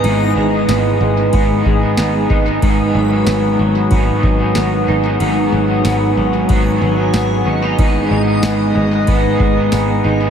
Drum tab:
RD |x-x-x-x-|x-x-x-x-|x-x-x-x-|x-x-x-x-|
TB |--x---x-|--x---x-|--x---x-|--x---x-|
SD |--o---o-|--o---o-|--o---o-|--o---o-|
BD |----oo-o|o---oo--|----o---|o---oo--|